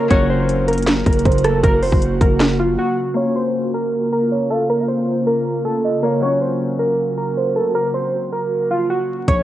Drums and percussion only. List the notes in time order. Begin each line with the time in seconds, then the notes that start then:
0.11 kick, closed hi-hat
0.49 closed hi-hat
0.68 closed hi-hat
0.73 closed hi-hat
0.78 closed hi-hat
0.82 closed hi-hat
0.87 snare, closed hi-hat
1.06 kick, closed hi-hat
1.13 closed hi-hat
1.19 closed hi-hat
1.25 kick, closed hi-hat
1.32 closed hi-hat
1.38 closed hi-hat
1.44 cross-stick, closed hi-hat
1.64 kick, closed hi-hat
1.83 open hi-hat
1.92 kick
2.02 closed hi-hat
2.21 kick, closed hi-hat
2.40 snare, closed hi-hat
9.28 kick, closed hi-hat